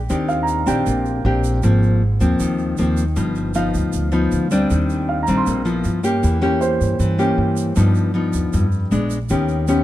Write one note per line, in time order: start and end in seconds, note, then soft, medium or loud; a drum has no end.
0.10 0.64 D#2 medium
0.10 0.85 D#3 medium
0.10 0.64 C4 soft
0.10 0.65 D4 soft
0.10 0.65 G4 medium
0.10 shaker medium
0.29 0.74 F5 medium
0.29 shaker soft
0.43 0.86 A#5 soft
0.48 shaker medium
0.66 0.85 A#1 medium
0.66 1.21 C4 medium
0.66 1.21 D4 medium
0.66 1.22 G4 medium
0.66 1.12 G5 medium
0.66 shaker medium
0.86 1.22 A#1 medium
0.86 1.61 A#2 medium
0.86 shaker medium
1.06 shaker soft
1.25 1.60 A#1 medium
1.25 1.60 C4 soft
1.25 1.60 D4 soft
1.25 1.61 G4 medium
1.44 shaker medium
1.63 2.17 G#1 loud
1.63 2.38 G#2 soft
1.63 2.01 F3 soft
1.63 2.02 A#3 medium
1.63 2.02 C4 medium
1.63 shaker medium
1.82 shaker soft
2.20 2.39 D#2 medium
2.20 2.75 F3 medium
2.20 2.75 A#3 medium
2.20 2.75 C4 medium
2.20 shaker medium
2.40 2.76 D#2 medium
2.40 3.15 D#3 medium
2.40 shaker medium
2.58 shaker soft
2.77 3.14 D#2 medium
2.77 3.03 F3 medium
2.77 3.03 A#3 medium
2.77 3.03 C4 medium
2.77 shaker soft
2.97 shaker medium
3.16 3.70 G1 medium
3.16 3.91 G2 soft
3.16 3.52 F3 soft
3.16 3.52 B3 soft
3.16 3.52 D#4 medium
3.16 shaker medium
3.35 shaker soft
3.54 4.09 F3 medium
3.54 4.10 B3 medium
3.54 4.10 D#4 medium
3.54 4.00 F5 soft
3.54 shaker medium
3.74 3.92 D2 medium
3.74 shaker medium
3.93 4.29 D2 medium
3.93 shaker medium
4.12 4.47 F3 medium
4.12 4.48 B3 medium
4.12 4.48 D#4 medium
4.12 shaker soft
4.31 4.68 D2 medium
4.31 shaker medium
4.51 5.24 G3 medium
4.51 5.25 C4 medium
4.51 5.25 D4 medium
4.51 shaker medium
4.70 5.24 D#2 medium
4.70 5.45 D#3 medium
4.70 shaker medium
4.90 shaker soft
5.09 5.53 F5 soft
5.23 5.65 A#5 soft
5.27 5.46 A#1 medium
5.27 5.63 G3 medium
5.27 5.63 C4 medium
5.27 5.63 D4 medium
5.27 shaker medium
5.37 5.78 C6 soft
5.46 5.83 A#1 medium
5.46 5.83 A#2 soft
5.46 shaker medium
5.65 6.01 F3 medium
5.65 6.01 B3 medium
5.65 6.01 E4 medium
5.65 shaker soft
5.84 6.21 G2 medium
5.84 shaker medium
6.03 6.40 A#3 medium
6.03 6.41 C#4 medium
6.03 6.41 G4 medium
6.03 shaker medium
6.23 6.77 E2 medium
6.23 6.98 E3 soft
6.23 shaker medium
6.41 7.16 A#3 medium
6.41 7.16 C#4 medium
6.41 7.16 G4 medium
6.41 shaker soft
6.61 7.06 C5 soft
6.61 shaker medium
6.81 6.99 G2 medium
6.81 shaker medium
6.99 7.35 G2 medium
6.99 7.74 E3 medium
6.99 shaker medium
7.18 7.73 A#3 medium
7.18 7.73 C#4 medium
7.18 7.73 G4 medium
7.18 shaker soft
7.38 7.74 G2 medium
7.57 shaker medium
7.76 8.51 G2 soft
7.76 8.30 G2 loud
7.76 8.11 F3 medium
7.76 8.12 B3 medium
7.76 8.12 D#4 medium
7.76 shaker medium
7.95 shaker soft
8.14 8.66 F3 medium
8.14 8.66 B3 medium
8.14 8.67 D#4 medium
8.33 8.52 D#2 medium
8.33 shaker medium
8.53 8.89 F2 medium
8.53 8.90 G2 soft
8.53 shaker medium
8.72 shaker soft
8.91 9.27 A#1 medium
8.91 9.17 G#3 medium
8.91 9.17 B3 soft
8.91 9.18 D4 medium
8.91 shaker soft
9.10 shaker medium
9.29 9.84 D#2 loud
9.29 9.84 D#3 soft
9.29 9.65 B3 soft
9.29 9.65 C#4 medium
9.29 9.65 G4 medium
9.29 shaker medium
9.48 shaker soft
9.67 9.84 B3 medium
9.67 9.84 C#4 medium
9.67 9.84 G4 medium
9.67 shaker medium